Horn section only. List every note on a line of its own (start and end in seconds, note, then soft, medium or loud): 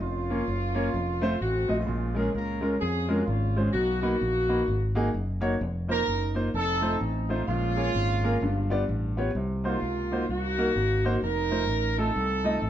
0.02 1.38 A#3 medium
0.02 1.38 C#4 medium
0.02 1.38 F4 medium
1.41 1.86 A3 medium
1.41 1.86 C4 medium
1.41 1.79 F#4 medium
1.78 2.69 G#3 medium
1.78 2.34 C#4 medium
1.78 2.16 F4 medium
2.16 2.33 G#4 medium
2.33 2.80 C#4 medium
2.33 2.80 F4 medium
2.33 2.69 A#4 loud
2.70 2.80 A#4 medium
2.80 3.26 C#4 medium
2.80 3.24 F4 medium
2.80 3.15 G#4 medium
3.16 3.26 F#4 medium
3.25 3.71 G#3 medium
3.25 3.71 C#4 medium
3.25 3.64 F4 medium
3.64 3.74 G#4 medium
3.72 4.02 A#3 medium
3.72 4.02 D#4 medium
3.72 4.00 F#4 medium
4.01 4.92 A#3 medium
4.01 4.92 D#4 medium
4.01 4.91 F#4 medium
5.90 6.52 D#4 medium
5.90 6.33 A#4 loud
6.56 7.45 C4 medium
6.56 7.45 D#4 medium
6.56 6.99 A4 loud
7.29 7.47 F4 medium
7.48 8.85 G#3 medium
7.48 8.85 C#4 medium
7.48 8.85 F4 loud
9.64 10.28 A#3 medium
9.64 10.26 F4 medium
10.29 11.19 A#3 medium
10.29 11.19 D#4 medium
10.29 11.19 F#4 medium
11.24 11.99 D#4 medium
11.24 11.98 A#4 loud
11.99 12.70 C4 medium
11.99 12.70 D#4 medium
11.99 12.70 A4 loud